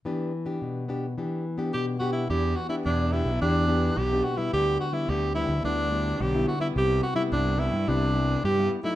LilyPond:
<<
  \new Staff \with { instrumentName = "Alto saxophone" } { \time 4/4 \key e \minor \tempo 4 = 107 r2. g'8 fis'16 e'16 | g'8 fis'16 e'16 d'8 e'8 d'4 g'8 fis'16 e'16 | g'8 fis'16 e'16 g'8 e'8 d'4 g'8 fis'16 e'16 | g'8 fis'16 e'16 d'8 e'8 d'4 g'8 r16 e'16 | }
  \new Staff \with { instrumentName = "Nylon-string guitar" } { \time 4/4 \key e \minor << { <b d' g'>8 r16 <b d' g'>8. <b d' g'>16 r16 <b d' g'>8 r16 <b d' g'>8. <b d' g'>8 | <b d' g'>8 r16 <b d' g'>8. <b d' g'>16 r16 <b d' g'>8 <b d' g'>8 r16 <b d' g'>8 <g b e'>16~ | <g b e'>8. <g b e'>8. <g b e'>16 r16 <g b e'>8 <g b e'>8 r16 <g b e'>8 <g b e'>16~ | <g b e'>8. <g b e'>8. <g b e'>16 r16 <g b e'>8 <g b e'>8. <g b e'>8 <fis a dis'>16 | } \\ { e4 b,4 e4 b,4 | e4 b,4 e4 b,4 | d4 d4 d4 d4 | c4 g,4 c4 g,4 | } >> }
  \new Staff \with { instrumentName = "Fingered electric bass" } { \clef bass \time 4/4 \key e \minor r1 | e,8 r8 e,8. b,,16 e,4 b,,8 r8 | d,8 r8 d,8. d,16 d,4 b,,8 r8 | c,8 r8 c,8. g,16 c,4 g,8 r8 | }
>>